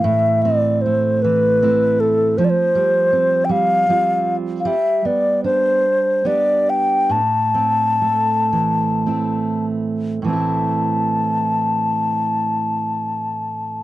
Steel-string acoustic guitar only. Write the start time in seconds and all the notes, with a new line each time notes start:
Already playing: E3 A3 C4 E4
0.04 A2
0.45 C4
0.86 A3
1.24 E3
1.62 A3 C4 E4
2.38 F3
2.75 G3
3.13 C4
3.49 G3
3.89 G3 C4 F4
4.65 G3
5.05 B3
5.44 D4
6.25 B3 D4 G4
7.09 A2
7.55 C4
8.02 A3
8.53 E3
9.07 A3 C4 E4
10.22 A2 E3
10.28 A3 C4
10.33 E4